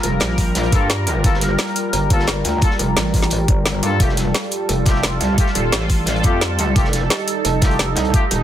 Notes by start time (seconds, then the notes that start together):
Already playing: G3 F4 A#4
0.03 F1, closed hi-hat
0.20 A#1, snare, closed hi-hat
0.29 snare
0.38 kick, snare, closed hi-hat, open hi-hat
0.55 snare, closed hi-hat
0.63 closed hi-hat
0.72 G2 A#3 F4 A4, kick, closed hi-hat
0.90 snare, closed hi-hat
1.07 closed hi-hat
1.24 G1 A#3 F4 A4, kick, closed hi-hat
1.34 snare
1.41 snare, closed hi-hat
1.58 snare, closed hi-hat
1.67 closed hi-hat
1.76 closed hi-hat
1.93 G1, closed hi-hat
2.10 A#3 F4 A4, kick, closed hi-hat
2.19 snare
2.27 snare, closed hi-hat
2.44 D2, snare, closed hi-hat
2.62 A#3 F4 A4, kick, closed hi-hat
2.70 snare
2.79 F1, closed hi-hat
2.97 A1, snare, closed hi-hat
3.05 snare
3.14 kick, snare, closed hi-hat, open hi-hat
3.22 snare
3.30 closed hi-hat
3.48 G1, kick, closed hi-hat
3.65 snare, closed hi-hat
3.83 G2 A#3 F4 A4, closed hi-hat, zap
4.00 F1 A3 F4 G4 A4, kick, closed hi-hat
4.09 snare
4.17 snare, closed hi-hat
4.34 snare, closed hi-hat
4.43 closed hi-hat
4.51 closed hi-hat
4.69 F1, closed hi-hat
4.86 A3 F4 G4, kick, snare, closed hi-hat
4.95 snare
5.03 snare, closed hi-hat
5.20 C2, snare, closed hi-hat
5.38 A3 F4 G4, kick, closed hi-hat
5.46 snare
5.55 D#1, closed hi-hat
5.72 snare, closed hi-hat
5.81 snare
5.89 kick, snare, closed hi-hat, open hi-hat
6.06 snare, closed hi-hat
6.16 closed hi-hat
6.23 F2 A3 F4 G4, kick, closed hi-hat
6.41 snare, closed hi-hat
6.59 closed hi-hat
6.76 F1 A3 D#4 F4 G4, kick, closed hi-hat
6.84 snare
6.93 snare, closed hi-hat
7.10 snare, closed hi-hat
7.19 closed hi-hat
7.28 closed hi-hat
7.45 F1, closed hi-hat
7.62 A3 F4 G4, kick, snare, closed hi-hat
7.71 closed hi-hat
7.79 snare, closed hi-hat
7.96 C2, snare, closed hi-hat
8.05 closed hi-hat
8.14 A3 F4 G4, kick, closed hi-hat
8.31 D#1, closed hi-hat